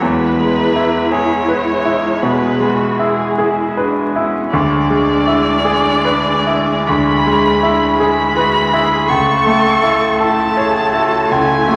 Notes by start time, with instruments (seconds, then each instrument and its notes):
0.02 grand piano E2, viola G#3, cello E4, violin B4
0.40 grand piano G#3
0.76 grand piano E4
1.12 grand piano G#4, violin C#5
1.49 grand piano B4
1.85 grand piano E4
2.22 grand piano B2, cello G#4, violin B4
2.60 grand piano G#3, cello F#4
2.99 grand piano E4, cello G#4
3.38 cello E4, grand piano G#4
3.77 cello D4, grand piano B4
4.16 cello C#4, grand piano E4
4.52 grand piano D2, viola G#3, cello D4, violin D5
4.90 grand piano G#3
5.27 grand piano E4
5.65 grand piano G#4
6.05 grand piano B4
6.47 grand piano E4
6.87 grand piano D2, cello D4, violin B5
7.27 grand piano G#3
7.63 grand piano E4
7.98 cello E4, grand piano G#4, violin B5
8.36 cello F#4, grand piano B4
8.72 grand piano E4, cello G#4
9.08 grand piano C#2, viola A3, cello A4, violin C#6
9.47 grand piano A3
9.83 grand piano E4
10.20 cello E4, grand piano A4, violin A5
10.57 cello G#4, grand piano C#5
10.93 grand piano E4, cello F#4
11.31 grand piano C#2, cello E4, violin G#5
11.67 grand piano A3, cello G#4